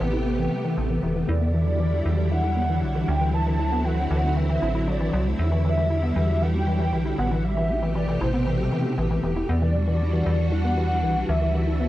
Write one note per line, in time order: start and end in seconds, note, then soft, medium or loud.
0.00 0.48 A1 medium
0.00 1.27 C3 medium
0.00 0.11 E3 medium
0.00 1.27 A3 medium
0.00 1.27 B3 medium
0.00 1.27 G4 medium
0.00 0.52 B4 medium
0.13 0.24 E4 medium
0.26 0.38 B3 loud
0.39 0.53 E3 medium
0.52 0.63 G3 medium
0.65 0.79 E3 medium
0.77 0.98 A1 medium
0.77 0.88 E4 medium
0.90 1.01 E3 medium
1.03 1.24 E1 medium
1.03 1.14 E3 loud
1.16 1.27 E3 medium
1.29 2.02 E2 loud
1.29 7.40 D3 medium
1.29 7.40 F#3 medium
1.29 3.32 G3 medium
1.29 1.40 E4 medium
1.29 7.40 E4 medium
1.29 2.33 D5 loud
1.41 1.54 B3 loud
1.54 1.69 E3 medium
1.67 1.78 G3 medium
1.80 1.94 E3 medium
1.93 2.04 E4 medium
2.06 2.84 E2 medium
2.06 2.16 E3 medium
2.18 2.29 E3 loud
2.31 2.42 E3 medium
2.31 3.10 F#5 loud
2.44 2.55 E4 medium
2.57 2.69 B3 loud
2.70 2.84 E3 medium
2.82 3.03 B1 medium
2.82 2.93 G3 medium
2.95 3.10 E3 medium
3.08 4.07 D2 loud
3.08 3.19 E4 medium
3.08 3.35 G5 loud
3.21 3.32 E3 medium
3.34 3.45 E3 loud
3.34 5.37 C4 medium
3.34 3.86 A5 loud
3.47 3.57 E3 medium
3.59 3.70 E4 medium
3.72 3.84 B3 loud
3.85 3.99 E3 medium
3.85 4.38 F#5 loud
3.98 4.09 F#3 medium
4.11 4.58 D2 medium
4.11 4.25 E3 medium
4.24 4.34 E4 medium
4.36 4.47 E3 medium
4.36 4.87 E5 loud
4.49 4.60 E3 loud
4.62 5.09 A1 medium
4.62 4.69 E4 medium
4.75 4.87 E4 loud
4.87 5.00 F#3 medium
4.87 5.23 D5 loud
5.00 5.13 E3 medium
5.13 5.34 C2 loud
5.13 5.28 F#3 medium
5.26 5.40 A3 medium
5.39 6.12 E2 loud
5.39 7.42 G3 medium
5.39 5.50 E4 medium
5.39 6.43 E5 loud
5.52 5.63 E3 medium
5.65 5.75 E3 loud
5.77 5.88 E3 medium
5.90 6.01 E4 medium
6.03 6.15 B3 loud
6.16 6.94 E2 medium
6.16 6.30 E3 medium
6.29 6.40 G3 medium
6.41 6.56 E3 medium
6.41 7.20 G5 loud
6.54 6.65 E4 medium
6.67 6.78 E3 medium
6.80 6.91 E3 loud
6.93 7.14 B1 medium
6.93 7.04 E3 medium
7.06 7.16 E4 medium
7.18 8.17 A1 loud
7.18 7.31 B3 loud
7.18 7.45 F#5 loud
7.31 7.46 E3 medium
7.44 9.47 B2 medium
7.44 9.47 C3 medium
7.44 7.55 G3 medium
7.44 9.47 A3 medium
7.44 9.47 G4 medium
7.44 7.95 E5 loud
7.57 7.71 E3 medium
7.70 7.81 E4 medium
7.82 7.93 E3 medium
7.95 8.06 E3 loud
7.95 8.19 D5 medium
8.08 8.19 E3 medium
8.21 8.68 A1 medium
8.21 8.32 E4 medium
8.21 8.69 C5 medium
8.34 8.46 B3 loud
8.47 8.61 E3 medium
8.59 8.70 G3 medium
8.72 8.87 E3 medium
8.85 8.96 E4 medium
8.98 9.19 A1 medium
8.98 9.09 E3 medium
9.11 9.22 E3 loud
9.24 9.44 E1 medium
9.24 9.34 E3 medium
9.36 9.47 E4 medium
9.49 10.22 E2 loud
9.49 11.88 E3 medium
9.49 11.52 G3 medium
9.49 9.61 B3 medium
9.49 11.52 D4 medium
9.49 11.52 F#4 medium
9.49 10.48 D5 loud
9.62 9.76 E3 medium
9.75 9.86 G3 medium
9.88 10.02 E3 medium
10.01 10.11 E4 medium
10.13 10.24 E3 medium
10.26 11.05 E2 medium
10.26 10.37 E3 loud
10.39 10.50 E3 medium
10.52 10.63 E4 medium
10.52 11.30 F#5 loud
10.65 10.77 B3 loud
10.77 10.92 E3 medium
10.90 11.01 G3 medium
11.03 11.24 B1 medium
11.03 11.17 E3 medium
11.16 11.27 E4 medium
11.29 11.88 D2 medium
11.29 11.40 E3 medium
11.29 11.88 E5 loud
11.42 11.52 E3 loud
11.54 11.65 E3 medium
11.54 11.88 C4 medium
11.54 11.88 D4 medium
11.54 11.88 F#4 medium
11.67 11.78 E4 medium
11.80 11.88 B3 loud